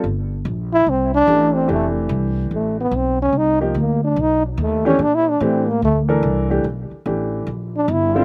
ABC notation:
X:1
M:4/4
L:1/8
Q:"Swing" 1/4=145
K:C
V:1 name="Upright piano"
z6 [E,A,DG]2 | [E,A,DG]4- [E,A,DG] z3 | z [F,_B,_EG] z4 z [=E,A,DG] | z2 [E,A,DG] z2 [E,DA_B]2 [E,A,DG] |
z2 [E,A,DG]2 z3 [D,G,CE] |]
V:2 name="Trombone"
z3 E C D2 C | A, z3 A, B, C _D | _E G, _B, D ^D ^F, A, _D | (3D E D C _B, A, z3 |
z4 z D E F |]
V:3 name="Upright bass" clef=bass
G,,,2 _B,,,2 C,,2 A,,,2 | F,,,2 C,,2 A,,,2 B,,,2 | C,,2 D,,2 B,,,2 ^D,,2 | _B,,2 A,,2 D,,2 C,,2 |
B,,, z A,,,2 _B,,,2 G,,,2 |]